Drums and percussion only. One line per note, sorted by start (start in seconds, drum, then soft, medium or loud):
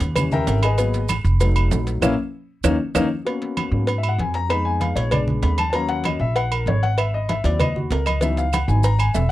0.00 cowbell medium
0.00 high conga soft
0.00 low agogo medium
0.00 maracas soft
0.16 cowbell loud
0.16 high conga soft
0.16 low conga medium
0.16 low agogo loud
0.16 claves medium
0.16 maracas medium
0.32 high conga soft
0.32 low conga medium
0.32 maracas soft
0.47 cowbell medium
0.47 high conga soft
0.47 low timbale medium
0.47 low agogo medium
0.47 maracas medium
0.63 cowbell medium
0.63 low agogo loud
0.63 claves medium
0.63 maracas soft
0.78 cowbell loud
0.78 high conga soft
0.78 low agogo medium
0.78 maracas medium
0.94 cowbell medium
0.94 high conga soft
0.94 maracas soft
1.09 cowbell medium
1.09 high conga medium
1.09 low agogo loud
1.09 claves medium
1.09 maracas medium
1.25 high conga soft
1.25 maracas soft
1.40 cowbell loud
1.40 high conga soft
1.40 low agogo medium
1.40 maracas medium
1.56 high conga soft
1.56 low agogo loud
1.56 claves medium
1.56 maracas soft
1.71 cowbell medium
1.71 high conga medium
1.71 low timbale medium
1.71 maracas medium
1.87 cowbell medium
1.87 high conga soft
1.87 maracas soft
2.02 cowbell loud
2.02 high conga loud
2.02 high timbale medium
2.02 claves loud
2.02 maracas loud
2.64 cowbell loud
2.64 high conga loud
2.64 high timbale loud
2.64 claves medium
2.64 maracas loud
2.95 cowbell loud
2.95 high conga medium
2.95 high timbale loud
2.95 claves loud
2.95 maracas loud
3.27 cowbell loud
3.27 high conga soft
3.27 low agogo medium
3.42 cowbell medium
3.42 high conga soft
3.57 cowbell medium
3.57 high conga medium
3.57 low agogo loud
3.57 claves medium
3.73 high conga soft
3.87 cowbell loud
3.87 high conga soft
3.87 low agogo medium
4.03 high conga soft
4.03 low agogo medium
4.03 claves medium
4.19 cowbell medium
4.19 high conga medium
4.34 cowbell medium
4.34 high conga soft
4.50 cowbell loud
4.50 high conga soft
4.50 low agogo medium
4.50 claves medium
4.66 high conga soft
4.81 cowbell medium
4.81 high conga medium
4.81 low agogo medium
4.96 cowbell medium
4.96 high conga soft
4.96 low agogo medium
5.11 cowbell loud
5.11 high conga soft
5.11 low conga medium
5.11 low agogo loud
5.11 claves medium
5.28 high conga soft
5.28 low conga medium
5.43 cowbell medium
5.43 high conga soft
5.43 low timbale medium
5.43 low agogo medium
5.58 cowbell medium
5.58 high conga medium
5.58 low agogo loud
5.58 claves medium
5.73 cowbell loud
5.73 high conga soft
5.73 low agogo medium
5.89 cowbell medium
5.89 high conga soft
6.04 cowbell medium
6.04 high conga loud
6.04 low agogo loud
6.04 claves medium
6.21 high conga soft
6.36 cowbell loud
6.36 high conga soft
6.36 low agogo medium
6.52 high conga soft
6.52 low agogo loud
6.52 claves medium
6.67 cowbell medium
6.67 high conga medium
6.67 low timbale medium
6.83 cowbell medium
6.83 high conga soft
6.98 cowbell loud
6.98 high conga soft
6.98 low agogo loud
6.98 claves medium
7.14 high conga soft
7.29 cowbell medium
7.29 high conga loud
7.29 low agogo medium
7.44 cowbell medium
7.44 high conga soft
7.44 low agogo medium
7.60 cowbell loud
7.60 high conga soft
7.60 low conga medium
7.60 low agogo loud
7.60 claves medium
7.76 high conga soft
7.76 low conga medium
7.91 cowbell medium
7.91 high conga soft
7.91 low timbale medium
7.91 low agogo medium
8.06 cowbell medium
8.06 high conga medium
8.06 low agogo loud
8.06 claves medium
8.21 cowbell loud
8.21 low agogo medium
8.21 maracas medium
8.37 cowbell medium
8.37 high conga soft
8.37 maracas soft
8.53 cowbell medium
8.53 high conga loud
8.53 low agogo loud
8.53 claves medium
8.53 maracas medium
8.69 maracas soft
8.83 cowbell loud
8.83 high conga soft
8.83 low agogo loud
8.83 maracas medium
8.99 high conga soft
8.99 low agogo loud
8.99 claves medium
8.99 maracas soft
9.14 cowbell medium
9.14 high conga medium
9.14 low timbale medium
9.14 maracas medium